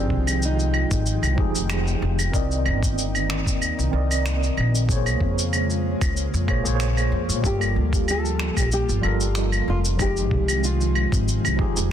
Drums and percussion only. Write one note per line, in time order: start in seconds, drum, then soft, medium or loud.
0.10 kick medium
0.27 cabasa medium
0.27 claves medium
0.42 cabasa medium
0.59 cabasa soft
0.74 claves medium
0.91 kick loud
0.91 cabasa medium
1.06 cabasa medium
1.23 cabasa soft
1.23 claves medium
1.38 kick loud
1.55 cabasa medium
1.70 finger snap medium
1.70 cabasa medium
1.70 claves medium
1.87 cabasa soft
2.19 cabasa medium
2.19 claves medium
2.33 kick loud
2.33 cabasa medium
2.51 cabasa soft
2.66 claves medium
2.83 kick loud
2.83 cabasa medium
2.98 cabasa medium
3.15 cabasa soft
3.15 claves medium
3.30 finger snap medium
3.46 kick medium
3.46 cabasa medium
3.62 cabasa medium
3.62 claves medium
3.79 cabasa soft
4.11 cabasa medium
4.11 claves medium
4.26 finger snap medium
4.26 cabasa medium
4.43 cabasa soft
4.57 claves medium
4.75 cabasa medium
4.89 kick loud
4.89 cabasa medium
5.06 cabasa soft
5.06 claves medium
5.21 kick medium
5.38 cabasa medium
5.53 cabasa medium
5.53 claves medium
5.70 cabasa soft
6.01 kick loud
6.01 cabasa medium
6.01 claves medium
6.17 cabasa medium
6.34 cabasa soft
6.48 kick loud
6.48 claves medium
6.66 cabasa medium
6.80 finger snap medium
6.80 cabasa medium
6.97 cabasa soft
6.97 claves medium
7.30 cabasa medium
7.44 kick loud
7.44 cabasa medium
7.61 cabasa soft
7.61 claves medium
7.93 kick loud
7.93 cabasa medium
8.08 cabasa medium
8.08 claves medium
8.25 cabasa soft
8.39 finger snap medium
8.57 kick medium
8.57 cabasa medium
8.57 claves medium
8.71 cabasa medium
8.89 cabasa soft
9.03 claves medium
9.20 cabasa medium
9.35 finger snap medium
9.35 cabasa medium
9.52 cabasa soft
9.52 claves medium
9.85 cabasa medium
9.99 kick loud
9.99 cabasa soft
9.99 claves medium
10.17 cabasa soft
10.31 kick medium
10.48 cabasa medium
10.48 claves medium
10.64 cabasa medium
10.81 cabasa soft
10.95 claves medium
11.12 kick medium
11.12 cabasa medium
11.28 cabasa medium
11.45 cabasa soft
11.45 claves medium
11.59 kick medium
11.77 cabasa medium